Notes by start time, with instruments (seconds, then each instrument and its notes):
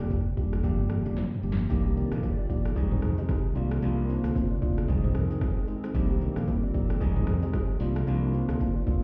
0.00 fingered electric bass F1, tine electric piano G3 A#3 D4 G4, low bongo
0.11 kick, high bongo, shaker
0.37 fingered electric bass F1, tine electric piano G3 A#3 D4 G4, kick, shaker
0.53 cross-stick, high bongo, shaker
0.63 fingered electric bass G1, tine electric piano G3 A#3 D4 G4, kick, low conga, shaker
0.80 low bongo
0.89 cross-stick, low conga, shaker
1.05 fingered electric bass F1, tine electric piano G3 A#3 D4 G4, low bongo, shaker
1.17 snare, high bongo, shaker
1.35 mid tom
1.43 fingered electric bass G1, tine electric piano G3 A#3 D4 G4, shaker
1.52 snare
1.59 shaker
1.69 fingered electric bass C2, analog synth pad D#3 A#3 G4 D5, tine electric piano A#3 D4 D#4 G4, kick, low conga, shaker
1.86 kalimba A#3 G4
1.97 kalimba D4 A#4, high bongo, low bongo, shaker
2.11 fingered electric bass A#1, tine electric piano A#3 D4 D#4 G4, cross-stick, low bongo, shaker
2.23 kick, high bongo, shaker
2.39 kalimba F4 D5
2.49 fingered electric bass A#1, tine electric piano A#3 D4 D#4 G4, kalimba F4 D5, kick, shaker
2.65 cross-stick, shaker
2.76 fingered electric bass C2, analog synth pad C3 D#3 G#3 D#4, tine electric piano G#3 C4 D#4 G#4, kick, low conga, shaker
2.91 kalimba D#4 C5, mid tom, low bongo
3.02 cross-stick, low conga, shaker
3.18 tine electric piano G#3 C4 D#4 G#4, kalimba G4 D#5, low bongo, shaker
3.29 kick, cross-stick, high bongo, shaker
3.55 fingered electric bass C2, analog synth pad F3 A#3 D4, tine electric piano A#3 C4 D4 F4, kalimba F4 D5, shaker
3.71 cross-stick, shaker
3.82 fingered electric bass C2, tine electric piano A#3 C4 D4 F4, low conga, shaker
3.98 kalimba D4 A#4
4.09 kalimba D#4 C5, high bongo, low bongo, shaker
4.24 fingered electric bass D2, tine electric piano A#3 C4 D4 F4, cross-stick, low bongo, shaker
4.35 kick, high bongo, shaker
4.51 kalimba F4 D5
4.62 fingered electric bass D2, tine electric piano A#3 C4 D4 F4, kalimba F4 D5, kick, shaker
4.78 cross-stick, shaker
4.88 fingered electric bass C2, analog synth pad D#3 G#3 C4, tine electric piano G#3 C4 D#4 G#4, kick, low conga, shaker
5.04 kalimba D#4 C5, mid tom, low bongo
5.15 kalimba D4 A#4, cross-stick, low conga, shaker
5.30 tine electric piano G#3 C4 D#4 G#4, low bongo, shaker
5.41 kick, cross-stick, high bongo, shaker
5.57 kalimba C4 G#4
5.67 tine electric piano G#3 C4 D#4 G#4, shaker
5.84 kalimba D#4 C5, cross-stick, shaker
5.94 fingered electric bass C2, analog synth pad D#3 G3 A#3, tine electric piano A#3 D4 D#4 G4, kick, low conga, shaker
6.10 kalimba A#3 G4
6.21 kalimba D4 A#4, high bongo, low bongo, shaker
6.36 fingered electric bass A#1, tine electric piano A#3 D4 D#4 G4, cross-stick, low bongo, shaker
6.48 kick, high bongo, shaker
6.63 kalimba F4 D5
6.74 fingered electric bass A#1, tine electric piano A#3 D4 D#4 G4, kalimba F4 D5, kick, shaker
6.90 cross-stick, shaker
7.00 fingered electric bass C2, analog synth pad C3 D#3 G#3, tine electric piano G#3 C4 D#4 G#4, kick, low conga, shaker
7.16 kalimba D#4 C5, mid tom, low bongo
7.27 cross-stick, low conga, shaker
7.42 tine electric piano G#3 C4 D#4 G#4, kalimba G4 D#5, low bongo, shaker
7.53 kick, cross-stick, high bongo, shaker
7.80 fingered electric bass C2, analog synth pad F3 A#3 D4, tine electric piano A#3 C4 D4 F4, kalimba F4 D5, open hi-hat, shaker
7.96 cross-stick, shaker
8.06 fingered electric bass C2, tine electric piano A#3 C4 D4 F4, low conga, shaker
8.23 kalimba D4 A#4
8.34 kalimba D#4 C5, high bongo, low bongo, shaker
8.48 fingered electric bass D2, tine electric piano A#3 C4 D4 F4, cross-stick, low bongo, shaker
8.60 kick, high bongo, shaker
8.76 kalimba F4 D5
8.86 fingered electric bass D2, tine electric piano A#3 C4 D4 F4, kalimba F4 D5, kick, shaker